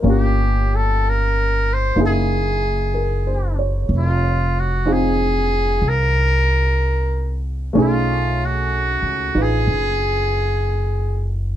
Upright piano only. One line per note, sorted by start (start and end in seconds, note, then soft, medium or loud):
0.00 1.94 A#3 soft
0.00 0.22 A#4 soft
0.04 1.97 C#4 soft
0.04 1.98 F4 soft
0.04 1.99 G4 soft
1.96 3.89 A#3 soft
1.96 3.89 D#4 soft
1.96 3.90 E4 soft
2.01 3.91 G#4 medium
2.94 3.54 A#4 soft
3.27 3.76 C5 soft
3.59 4.08 C#5 soft
4.86 7.75 C4 soft
4.86 7.75 D#4 soft
4.86 7.75 F4 soft
4.86 7.76 G#4 soft
7.73 11.57 A3 medium
7.73 11.57 C#4 soft
7.73 9.33 D#4 soft
7.78 11.57 G#4 medium
9.35 11.57 D#4 soft
9.35 11.57 F4 soft
9.35 11.57 B4 soft